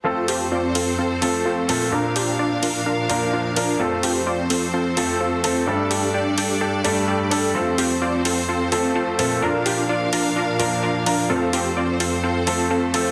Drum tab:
HH |-o-o-o-o|-o-o-o-o|-o-o-o-o|-o-o-o-o|

HH |-o-o-o-o|-o-o-o-o|-o-o-o-o|